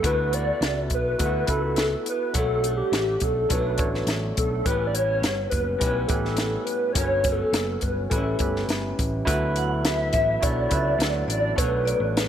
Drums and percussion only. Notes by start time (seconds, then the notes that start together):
0.04 kick, closed hi-hat
0.33 closed hi-hat
0.62 snare, closed hi-hat
0.90 kick, closed hi-hat
1.19 kick, closed hi-hat
1.47 kick, closed hi-hat
1.76 snare, closed hi-hat
2.06 closed hi-hat
2.34 kick, closed hi-hat
2.64 closed hi-hat
2.93 snare, closed hi-hat
3.20 kick, closed hi-hat
3.50 kick, closed hi-hat
3.78 kick, closed hi-hat
3.94 snare
4.07 snare, closed hi-hat
4.37 kick, closed hi-hat
4.66 kick, closed hi-hat
4.95 closed hi-hat
5.23 snare, closed hi-hat
5.51 kick, closed hi-hat
5.81 kick, closed hi-hat
6.09 kick, closed hi-hat
6.25 snare
6.37 snare, closed hi-hat
6.67 closed hi-hat
6.95 kick, closed hi-hat
7.24 kick, closed hi-hat
7.54 snare, closed hi-hat
7.81 kick, closed hi-hat
8.11 kick, closed hi-hat
8.39 kick, closed hi-hat
8.56 snare
8.69 snare, closed hi-hat
8.99 kick, closed hi-hat
9.27 kick, closed hi-hat
9.56 closed hi-hat
9.85 snare, closed hi-hat
10.13 kick, closed hi-hat
10.43 kick, closed hi-hat
10.71 kick, closed hi-hat
11.00 snare, closed hi-hat
11.30 closed hi-hat
11.58 kick, closed hi-hat
11.87 closed hi-hat
12.17 snare, closed hi-hat